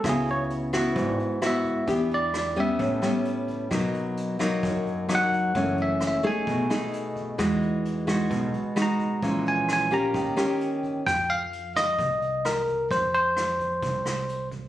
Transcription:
<<
  \new Staff \with { instrumentName = "Tine electric piano" } { \time 4/4 \key e \lydian \tempo 4 = 131 gis'8 cis''8 r2 e''4~ | e''8 d''8 d''8 e''4. r4 | r2. fis''4~ | fis''8 e''8 e''8 gis''4. r4 |
r2. ais''4~ | ais''8 gis''8 gis''8 ais''4. r4 | \key c \phrygian g''8 f''4 ees''4. bes'4 | c''8 c''2. r8 | }
  \new Staff \with { instrumentName = "Nylon-string guitar" } { \time 4/4 \key e \lydian << { <b e' fis'>4. <b e' fis'>4. <b e' fis'>4 | <b d' g'>4. <g b cis'>4 <g b cis'>4. | <fis ais dis'>4. <fis ais dis'>4. <fis ais dis'>4 | <e a cis'>4. <a dis' gis'>4 <a dis' gis'>4. |
<gis dis' fis'>4. <gis dis' fis'>4. <gis dis' fis'>4 | <e gis cis'>4. <ais cis' g'>4 <ais cis' g'>4. | \key c \phrygian r1 | r1 | } \\ { cis2 gis,2 | e2 a,2 | b,2 fis,2 | fis,2 b,2 |
e2 b,2 | ais,2 dis2 | r1 | r1 | } >> }
  \new Staff \with { instrumentName = "Upright bass" } { \clef bass \time 4/4 \key e \lydian cis,2 gis,,8 r4. | e,2 a,,8 r4. | b,,2 fis,8 r4. | fis,,2 b,,8 r4. |
e,2 b,,8 r4. | ais,,2 dis,8 r4. | \key c \phrygian f,2 c,2 | f,2 c,2 | }
  \new DrumStaff \with { instrumentName = "Drums" } \drummode { \time 4/4 <hh bd ss>8 hh8 hh8 <hh bd ss>8 <hh bd>8 hh8 <hh ss>8 <hh bd>8 | <hh bd>8 hh8 <hh ss>8 <hh bd>8 <hh bd>8 <hh ss>8 hh8 <hh bd>8 | <hh bd ss>8 hh8 hh8 <hh bd ss>8 <hh bd>8 hh8 <hh ss>8 <hh bd>8 | <hh bd>8 hh8 <hh ss>8 <hh bd>8 <hh bd>8 <hh ss>8 hh8 <hh bd>8 |
<hh bd ss>8 hh8 hh8 <hh bd ss>8 <hh bd>8 hh8 <hh ss>8 <hh bd>8 | <hh bd>8 hh8 <hh ss>8 <hh bd>8 <hh bd>8 <hh ss>8 hh8 <hh bd>8 | <hh bd ss>8 hh8 hh8 <hh bd ss>8 <hh bd>8 hh8 <hh ss>8 <hh bd>8 | <hh bd>8 hh8 <hh ss>8 <hh bd>8 <hh bd>8 <hh ss>8 hh8 <hh bd>8 | }
>>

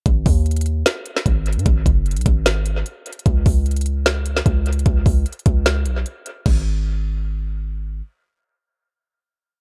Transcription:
<<
  \new Staff \with { instrumentName = "808-style bass" } { \clef bass \time 4/4 \key gis \minor \tempo 4 = 150 gis,,8 dis,4. r4 gis,,8. gis,16 | gis,,8 fis,,8. b,,16 gis,,4. r4 | cis,8 cis,2~ cis,8 cis,4 | cis,8 cis,8 r8 cis,4 b,,8 r4 |
gis,,1 | r1 | }
  \new DrumStaff \with { instrumentName = "Drums" } \drummode { \time 4/4 <hh bd>8 <hho bd>8 hh32 hh32 hh32 hh32 hh8 <hh sn>8 hh16 sn16 \tuplet 3/2 { <hh bd>16 r16 r16 hh16 hh16 hh16 } | <hh bd>8 <hh bd>8 hh32 hh32 hh32 hh32 <hh bd>8 <hh sn>8 hh8 \tuplet 3/2 { hh16 r16 r16 hh16 hh16 hh16 } | <hh bd>8 <hho bd>8 hh32 hh32 hh32 hh32 hh8 <hh sn>8 hh16 sn16 \tuplet 3/2 { <hh bd>16 r16 r16 hh16 hh16 hh16 } | <hh bd>8 <hho bd>8 \tuplet 3/2 { hh16 hh16 hh16 <hh bd>16 r16 r16 } <hh sn>8 hh8 hh8 hh8 |
<cymc bd>4 r4 r4 r4 | r4 r4 r4 r4 | }
>>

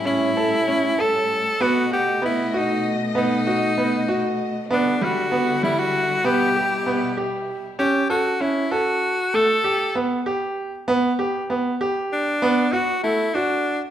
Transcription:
<<
  \new Staff \with { instrumentName = "Alto saxophone" } { \time 5/8 \key g \lydian \tempo 4 = 97 e'4. a'4 | fis'8 g'8 e'8 dis'8 r8 | dis'2 r8 | d'8 fis'4 e'16 fis'8. |
g'4. r4 | g'8 fis'8 e'8 fis'4 | a'4 r4. | r2 d'8~ |
d'8 fis'8 e'8 d'8. r16 | }
  \new Staff \with { instrumentName = "Grand piano" } { \time 5/8 \key g \lydian cis'8 a'8 cis'8 a'4 | b8 fis''8 b8 fis'4 | b8 fis'8 b8 fis'4 | b8 g8 b8 g4 |
b8 g'8 b8 g'4 | cis'8 a'8 cis'8 a'4 | a8 g'8 b8 g'4 | b8 g'8 b8 g'4 |
b8 fis'8 a8 fis'4 | }
  \new Staff \with { instrumentName = "String section" } { \clef bass \time 5/8 \key g \lydian << { cis'2~ cis'8 | dis''2~ dis''8~ | dis''2~ dis''8 | e'2~ e'8~ |
e'2~ e'8 | r2 r8 | r2 r8 | r2 r8 |
r2 r8 | } \\ { <a, g>2~ <a, g>8 | <b, a>2~ <b, a>8~ | <b, a>2~ <b, a>8 | <d g>2~ <d g>8 |
<b, g>2~ <b, g>8 | r2 r8 | r2 r8 | r2 r8 |
r2 r8 | } >> }
>>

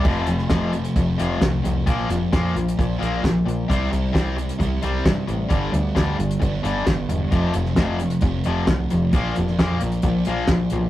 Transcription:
<<
  \new Staff \with { instrumentName = "Distorted electric guitar" } { \clef bass \time 4/4 \key f \major \tempo 4 = 132 <f, c f a c'>2 <f, c f a c'>2 | <bes, f bes d'>2 <bes, f bes d'>2 | <c g c' e'>2 <c g c' e'>2 | <g, d g b d'>2 <g, d g b d'>2 |
<f, c f a c'>2 <f, c f a c'>2 | <bes, f bes d'>2 <bes, f bes d'>2 | }
  \new Staff \with { instrumentName = "Distorted electric guitar" } { \clef bass \time 4/4 \key f \major <f, c f>8 <f, c>8 <f, c f>8 <f, c>8 <f, c>8 <f, c f>8 <f, c>8 <f, c>8 | <bes, f bes>8 <bes, f>8 <bes, f bes>8 <bes, f>8 <bes, f>8 <bes, f bes>8 <bes, f>8 <bes, f>8 | <c g c'>8 <c g>8 <c g c'>8 <c g>8 <c g>8 <c g c'>8 <c g>8 <c g>8 | <g, d g>8 <g, d>8 <g, d g>8 <g, d>8 <g, d>8 <g, d g>8 <g, d>8 <g, d>8 |
<f, c f>8 <f, c>8 <f, c f>8 <f, c>8 <f, c>8 <f, c f>8 <f, c>8 <f, c>8 | <bes, f bes>8 <bes, f>8 <bes, f bes>8 <bes, f>8 <bes, f>8 <bes, f bes>8 <bes, f>8 <bes, f>8 | }
  \new Staff \with { instrumentName = "Picked electric bass" } { \clef bass \time 4/4 \key f \major f,,8 f,,8 f,,4 f,,8 f,,8 c,8 c,8 | bes,,8 f,,8 f,8 bes,,8 bes,,8 bes,,8 bes,,8 bes,,8 | c,8 c,8 c,4 c,8 c,8 g,8 a,,8 | g,,8 d,8 d,8 g,,8 g,,8 g,,8 g,,8 e,,8 |
f,,8 f,,8 f,,4 f,,8 f,,8 c,8 f,,8 | bes,,8 f,,8 f,8 bes,,8 bes,,8 bes,,8 bes,,8 b,,8 | }
  \new DrumStaff \with { instrumentName = "Drums" } \drummode { \time 4/4 <cymc bd>8 hh16 sn16 <hh bd sn>8 hh16 hh16 <hh bd>8 hh8 <hh bd sn>8 hh8 | <hh bd>8 hh8 <hh bd sn>8 hh16 hh16 <hh bd>8 hh8 <hh bd sn>8 hh8 | <hh bd>8 hh8 <hh bd sn>8 hh16 hh16 <hh bd>8 hh8 <hh bd sn>8 hh8 | <hh bd>8 hh8 <hh bd sn>8 hh16 hh16 <hh bd>8 hh8 <hh bd sn>8 hh8 |
<hh bd>8 hh16 sn16 <hh bd sn>8 hh16 hh16 <hh bd>8 hh8 <hh bd sn>8 hh8 | <hh bd>8 hh16 sn16 <hh bd sn>8 hh16 hh16 <hh bd>8 hh8 <hh bd sn>8 hh8 | }
>>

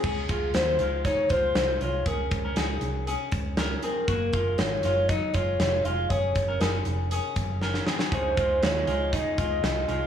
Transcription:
<<
  \new Staff \with { instrumentName = "Soft synth lead" } { \time 4/4 \key des \major \tempo 4 = 119 aes'4 c''4 des''8 c''4 des''8 | bes'4 aes'4 r4. bes'8~ | bes'4 des''4 ees''8 des''4 f''8 | des''4 bes'4 r2 |
c''4 des''4 ees''8 ees''4. | }
  \new Staff \with { instrumentName = "Clean electric guitar" } { \time 4/4 \key des \major r1 | r1 | r1 | r1 |
<des aes ees' f' aes'>8 <ees' f' aes'>8 <aes ees' f' aes'>8 <ees' f' aes'>8 <des aes ees' f' aes'>8 <ees' f' aes'>8 <aes ees' f' aes'>8 <ees' f' aes'>8 | }
  \new Staff \with { instrumentName = "Clean electric guitar" } { \time 4/4 \key des \major <des' aes'>8 <aes f'>4 <aes f'>8 <aes ees'>8 <aes f'>4 <aes f'>8 | <des' aes'>8. <des' bes'>16 <des' aes'>4 <des' aes'>4 <des' bes'>8 <c' aes'>8 | <bes ges'>8 <aes f'>4 <aes f'>8 <ges ees'>8 <aes f'>4 <aes f'>8 | <des' aes'>8. <des' bes'>16 <des' aes'>4 <des' aes'>4 <des' bes'>8 <c' aes'>8 |
<des' aes'>8 <aes f'>4 <aes f'>8 <aes ees'>8 <aes f'>4 <aes f'>8 | }
  \new Staff \with { instrumentName = "Fingered electric bass" } { \clef bass \time 4/4 \key des \major des,8 des,8 ees,8 des,8. r16 des,8 c,8 c,8 | des,8 des,8 des,8 c,8. r16 des,4 r8 | ges,,8 ges,,8 aes,,8 ges,,8. r16 ges,,8 f,,8 f,,8 | ges,,8 ges,,8 ges,,8 f,,8. r16 ges,,4 r8 |
des,8 des,8 ees,8 des,8. r16 des,8 c,8 c,8 | }
  \new DrumStaff \with { instrumentName = "Drums" } \drummode { \time 4/4 <cymc bd>8 <hh bd>8 <hh sn>8 hh8 <hh bd>8 <hh bd>8 <hh sn>8 hh8 | <hh bd>8 <hh bd>8 <hh sn>8 hh8 hh8 <hh bd>8 <hh sn>8 hh8 | <hh bd>8 <hh bd>8 <hh sn>8 <hh sn>8 <hh bd>8 <hh bd>8 <hh sn>8 hh8 | <hh bd>8 <hh bd>8 <hh sn>8 hh8 hh8 <hh bd>8 sn16 sn16 sn16 sn16 |
<hh bd>8 <hh bd>8 <hh sn>8 hh8 <hh bd>8 <hh bd>8 <hh sn>8 hh8 | }
>>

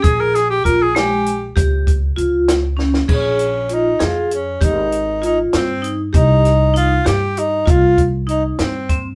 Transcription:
<<
  \new Staff \with { instrumentName = "Tenor saxophone" } { \time 5/8 \key bes \dorian \tempo 4 = 98 aes'16 bes'16 aes'16 g'16 bes'16 aes'16 g'4 | r2 r8 | des'4 ees'8 f'8 des'8 | ees'4 ees'8 c'8. r16 |
ees'4 f'8 g'8 ees'8 | f'8 r8 ees'8 c'8. r16 | }
  \new Staff \with { instrumentName = "Vibraphone" } { \time 5/8 \key bes \dorian aes'4 f'8 aes4 | g'4 f'4 des'8 | aes'4 f'8 aes'4 | g'4 f'4 ees'8 |
g'4 ees'8 g'4 | f'4 ees'4 c'8 | }
  \new Staff \with { instrumentName = "Upright bass" } { \clef bass \time 5/8 \key bes \dorian bes,,4 bes,,4. | des,4 des,4. | bes,,4. f,4 | aes,,4. g,4 |
c,4. g,4 | c,4. g,4 | }
  \new DrumStaff \with { instrumentName = "Drums" } \drummode { \time 5/8 <hh bd>8 <hh sn>8 <hh bd>8 <hh sn>8 hh8 | <hh bd>8 <hh bd>8 hh8 <hh sn>8 sn16 sn16 | <cymc bd>8 hh8 hh8 <hh sn>8 hh8 | <hh bd>8 hh8 hh8 <hh sn>8 hh8 |
<hh bd>8 <hh sn>8 hh8 <hh sn>8 hh8 | <hh bd>8 <hh bd>8 hh8 <hh sn>8 <hh bd>8 | }
>>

